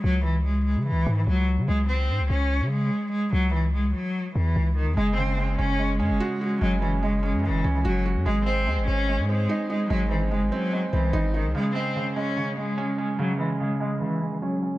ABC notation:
X:1
M:4/4
L:1/16
Q:1/4=146
K:C#m
V:1 name="Cello" clef=bass
F,2 E,2 G,2 G,2 E,3 E, F,2 z2 | G,2 ^B,4 C4 G,4 G,2 | F,2 E,2 G,2 F,4 E,4 D,2 | G,2 ^B,4 C4 G,4 G,2 |
F,2 E,2 G,2 G,2 E,3 E, F,2 z2 | G,2 ^B,4 C4 G,4 G,2 | F,2 E,2 G,2 F,4 E,4 D,2 | G,2 ^B,4 C4 G,4 G,2 |
F,2 E,2 G,2 G,2 E,3 E, F,2 z2 |]
V:2 name="Felt piano" clef=bass
z16 | z16 | z16 | G,2 C,2 G,2 C2 G,2 C2 F2 F2 |
G,2 C2 G,2 C2 G,2 C2 F2 F2 | G,2 ^B2 G,4 G,2 ^B,2 D2 D2 | G,2 ^B,2 G,2 B,2 G,2 B,2 D2 D2 | C,2 G,2 C,2 G,2 C,2 G,2 C2 C2 |
C,2 G,2 C,2 G,2 C,2 G,2 C2 C2 |]
V:3 name="808-style bass" clef=bass
C,,6- C,, C,3/2 C,,3/2 G,,2 C,,3 C, | C,,4 G,, C,, C,,3 C,3 z4 | C,,4 ^B,,, C,, z4 E,,2 C,,3 E,, | F,,,6 F,,,4 F,, F,,, z4 |
F,,,6- F,,, F,,3/2 F,,,3/2 C,,2 F,,,3 F,, | G,,,4 D,, G,,, G,,,3 G,,3 z4 | G,,,4 F,,, G,,, z4 ^B,,,2 G,,,3 B,,, | z16 |
z16 |]